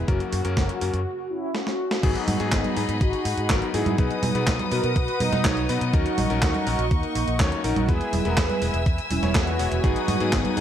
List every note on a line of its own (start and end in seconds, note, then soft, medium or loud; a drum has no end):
0.08 0.19 F#1 medium
0.08 1.05 C#3 medium
0.08 0.42 F#3 medium
0.08 1.05 F#3 medium
0.08 0.42 A#3 medium
0.08 1.05 A#3 medium
0.08 0.42 C#4 medium
0.08 1.51 F#4 loud
0.08 1.05 F#4 medium
0.08 0.42 A#4 medium
0.08 kick loud
0.08 closed hi-hat medium
0.20 closed hi-hat soft
0.33 0.43 F#2 loud
0.33 open hi-hat loud
0.45 0.55 F#2 medium
0.45 0.79 F#3 medium
0.45 0.78 A#3 medium
0.45 0.78 C#4 medium
0.45 0.78 A#4 loud
0.45 closed hi-hat soft
0.57 0.67 F#1 medium
0.57 kick loud
0.57 snare loud
0.57 closed hi-hat medium
0.69 closed hi-hat soft
0.81 0.92 F#2 medium
0.81 0.99 F#3 medium
0.81 0.99 A#3 medium
0.81 0.99 C#4 medium
0.81 0.99 A#4 medium
0.81 open hi-hat medium
0.94 1.04 F#2 medium
0.94 closed hi-hat soft
1.30 1.53 C#4 medium
1.30 1.55 E4 medium
1.55 2.00 C#4 medium
1.55 snare medium
1.67 snare medium
1.91 snare medium
2.03 2.14 G#1 medium
2.03 2.37 F#3 medium
2.03 2.37 B3 medium
2.03 2.37 D#4 medium
2.03 2.49 D#4 medium
2.03 2.54 F#4 loud
2.03 2.37 G#4 medium
2.03 3.97 G#4 medium
2.03 3.97 D#5 medium
2.03 7.85 F#5 medium
2.03 3.97 B5 medium
2.03 kick loud
2.03 closed hi-hat medium
2.03 crash loud
2.16 closed hi-hat soft
2.28 2.38 G#2 loud
2.28 open hi-hat loud
2.28 high conga medium
2.40 2.50 G#2 medium
2.40 2.74 F#3 medium
2.40 2.74 B3 medium
2.40 2.74 D#4 medium
2.40 2.74 G#4 loud
2.40 closed hi-hat soft
2.52 2.63 G#1 medium
2.52 2.98 B3 medium
2.52 3.01 D#4 medium
2.52 kick loud
2.52 snare loud
2.52 clap medium
2.52 closed hi-hat medium
2.64 closed hi-hat soft
2.64 high conga medium
2.76 2.87 G#2 medium
2.76 2.94 F#3 medium
2.76 2.94 B3 medium
2.76 2.94 D#4 medium
2.76 2.94 G#4 medium
2.76 open hi-hat medium
2.89 2.99 G#2 medium
2.89 closed hi-hat soft
3.01 3.11 G#1 loud
3.01 3.71 D#4 medium
3.01 3.76 F#4 loud
3.01 kick loud
3.01 closed hi-hat medium
3.13 closed hi-hat soft
3.25 3.36 G#2 loud
3.25 open hi-hat loud
3.37 3.48 G#2 medium
3.37 closed hi-hat soft
3.50 3.60 G#1 loud
3.50 3.71 F#3 loud
3.50 3.71 B3 medium
3.50 3.71 D#4 medium
3.50 3.71 A#4 loud
3.50 kick loud
3.50 snare loud
3.50 clap loud
3.50 closed hi-hat medium
3.62 closed hi-hat soft
3.74 3.84 G#2 medium
3.74 3.96 F#3 medium
3.74 3.96 B3 medium
3.74 3.96 D#4 medium
3.74 3.97 E4 medium
3.74 3.96 G#4 loud
3.74 3.97 G#4 loud
3.74 open hi-hat medium
3.86 3.97 G#2 medium
3.86 closed hi-hat soft
3.86 high conga medium
3.98 4.09 B1 medium
3.98 4.32 F#3 medium
3.98 4.32 B3 medium
3.98 4.32 D#4 medium
3.98 4.44 D#4 medium
3.98 4.44 G#4 loud
3.98 5.92 B4 medium
3.98 4.32 B4 medium
3.98 7.85 D#5 medium
3.98 5.92 D#6 medium
3.98 kick loud
3.98 closed hi-hat medium
4.11 closed hi-hat soft
4.23 4.33 B2 loud
4.23 open hi-hat loud
4.23 high conga medium
4.35 4.45 B2 medium
4.35 4.69 F#3 loud
4.35 4.69 B3 medium
4.35 4.69 D#4 medium
4.35 4.69 B4 loud
4.35 closed hi-hat soft
4.47 4.58 B1 medium
4.47 kick loud
4.47 snare loud
4.47 clap medium
4.47 closed hi-hat medium
4.59 closed hi-hat soft
4.59 high conga medium
4.71 4.82 B2 medium
4.71 4.89 F#3 medium
4.71 4.89 B3 medium
4.71 4.89 D#4 medium
4.71 4.95 F#4 medium
4.71 4.97 A#4 loud
4.71 4.89 B4 medium
4.71 open hi-hat medium
4.84 4.94 B2 medium
4.84 closed hi-hat soft
4.96 5.06 B1 medium
4.96 5.19 F#4 medium
4.96 5.21 B4 loud
4.96 kick loud
4.96 closed hi-hat medium
5.08 closed hi-hat soft
5.20 5.31 B2 medium
5.20 5.90 B3 medium
5.20 5.93 D#4 loud
5.20 open hi-hat loud
5.20 high conga medium
5.32 5.43 B2 medium
5.32 snare soft
5.32 closed hi-hat soft
5.32 high conga medium
5.45 5.66 B1 loud
5.45 5.66 F#3 medium
5.45 5.66 B3 medium
5.45 5.66 D#4 medium
5.45 5.66 C#5 loud
5.45 kick loud
5.45 snare loud
5.45 clap medium
5.45 closed hi-hat medium
5.57 closed hi-hat soft
5.69 5.80 B2 medium
5.69 5.91 F#3 loud
5.69 5.91 B3 medium
5.69 5.91 D#4 medium
5.69 5.91 B4 loud
5.69 open hi-hat medium
5.81 5.92 B2 medium
5.81 closed hi-hat soft
5.93 6.04 D#2 loud
5.93 6.27 F#3 medium
5.93 6.27 C#4 medium
5.93 6.27 D#4 medium
5.93 6.39 D#4 medium
5.93 6.41 F#4 loud
5.93 7.87 A#4 medium
5.93 6.27 A#4 loud
5.93 7.87 C#6 medium
5.93 kick loud
5.93 closed hi-hat medium
6.06 closed hi-hat soft
6.18 6.28 A#1 loud
6.18 open hi-hat loud
6.18 high conga medium
6.30 6.41 A#1 medium
6.30 6.64 F#3 medium
6.30 6.64 C#4 medium
6.30 6.64 D#4 medium
6.30 6.64 A#4 loud
6.30 closed hi-hat soft
6.42 6.53 D#2 loud
6.42 6.88 D#4 medium
6.42 6.93 F#4 loud
6.42 kick loud
6.42 snare loud
6.42 clap medium
6.42 closed hi-hat medium
6.54 closed hi-hat soft
6.54 high conga medium
6.67 6.77 A#1 medium
6.67 6.84 F#3 medium
6.67 6.84 C#4 medium
6.67 6.84 D#4 medium
6.67 6.84 A#4 medium
6.67 open hi-hat medium
6.79 6.89 A#1 medium
6.79 closed hi-hat soft
6.91 7.02 D#2 loud
6.91 7.61 A#3 medium
6.91 7.60 D#4 loud
6.91 kick loud
6.91 closed hi-hat medium
7.03 closed hi-hat soft
7.15 7.26 A#1 loud
7.15 open hi-hat medium
7.28 7.38 A#1 loud
7.28 closed hi-hat soft
7.40 7.50 D#2 loud
7.40 7.61 F#3 medium
7.40 7.61 C#4 medium
7.40 7.61 D#4 medium
7.40 7.61 C#5 loud
7.40 kick loud
7.40 snare loud
7.40 clap medium
7.40 closed hi-hat medium
7.52 closed hi-hat soft
7.64 7.75 A#1 medium
7.64 7.86 F#3 medium
7.64 7.86 C#4 medium
7.64 7.86 D#4 medium
7.64 7.87 D#4 medium
7.64 7.89 F#4 loud
7.64 7.86 A#4 loud
7.64 open hi-hat medium
7.76 7.87 A#1 medium
7.76 closed hi-hat soft
7.76 high conga medium
7.89 7.99 E2 loud
7.89 8.22 G#3 medium
7.89 8.22 B3 medium
7.89 8.22 E4 medium
7.89 8.23 E4 medium
7.89 8.26 G#4 loud
7.89 10.61 B4 medium
7.89 8.22 B4 loud
7.89 9.82 E5 medium
7.89 10.61 G#5 medium
7.89 9.82 E6 medium
7.89 kick loud
7.89 closed hi-hat medium
8.01 closed hi-hat soft
8.13 8.24 E1 loud
8.13 open hi-hat loud
8.13 high conga medium
8.25 8.36 E1 medium
8.25 8.59 G#3 medium
8.25 8.59 B3 medium
8.25 8.59 E4 medium
8.25 8.37 F#4 medium
8.25 8.38 A#4 medium
8.25 8.59 B4 loud
8.25 closed hi-hat soft
8.37 8.48 E2 medium
8.37 8.83 G#4 medium
8.37 8.83 B4 medium
8.37 kick loud
8.37 snare loud
8.37 clap medium
8.37 closed hi-hat medium
8.50 closed hi-hat soft
8.50 high conga medium
8.62 8.72 E1 medium
8.62 8.79 G#3 medium
8.62 8.79 B3 medium
8.62 8.79 E4 medium
8.62 8.79 B4 medium
8.62 open hi-hat medium
8.74 8.84 E1 medium
8.74 closed hi-hat soft
8.86 8.97 E2 medium
8.86 kick loud
8.86 closed hi-hat medium
8.98 closed hi-hat soft
9.11 9.21 E1 medium
9.11 9.34 C#4 medium
9.11 9.36 E4 medium
9.11 open hi-hat loud
9.11 high conga medium
9.23 9.33 E1 medium
9.23 9.57 G#3 medium
9.23 9.57 B3 medium
9.23 9.57 E4 medium
9.23 9.57 C#5 medium
9.23 snare soft
9.23 closed hi-hat soft
9.23 high conga medium
9.35 9.56 E2 medium
9.35 9.81 B3 medium
9.35 9.83 F#4 loud
9.35 kick loud
9.35 snare loud
9.35 clap medium
9.35 closed hi-hat medium
9.47 closed hi-hat soft
9.59 9.70 E1 medium
9.59 9.81 G#3 medium
9.59 9.81 B3 medium
9.59 9.81 E4 medium
9.59 9.81 C#5 medium
9.59 open hi-hat medium
9.72 9.82 E1 medium
9.72 closed hi-hat soft
9.84 9.94 G#1 loud
9.84 10.18 F#3 medium
9.84 10.18 B3 medium
9.84 10.18 D#4 medium
9.84 10.30 D#4 medium
9.84 10.34 F#4 loud
9.84 10.18 G#4 medium
9.84 10.61 F#5 medium
9.84 10.61 D#6 medium
9.84 kick loud
9.84 closed hi-hat medium
9.96 closed hi-hat soft
10.08 10.19 G#2 loud
10.08 open hi-hat loud
10.08 high conga medium
10.20 10.31 G#2 medium
10.20 10.54 F#3 loud
10.20 10.54 B3 medium
10.20 10.54 D#4 medium
10.20 10.54 G#4 loud
10.20 closed hi-hat soft
10.33 10.43 G#1 medium
10.33 10.61 B3 medium
10.33 10.61 D#4 loud
10.33 kick loud
10.33 snare loud
10.33 clap medium
10.33 closed hi-hat medium
10.45 closed hi-hat soft
10.45 high conga medium
10.57 10.61 G#2 medium
10.57 10.61 F#3 medium
10.57 10.61 B3 medium
10.57 10.61 D#4 medium
10.57 10.61 G#4 loud
10.57 open hi-hat medium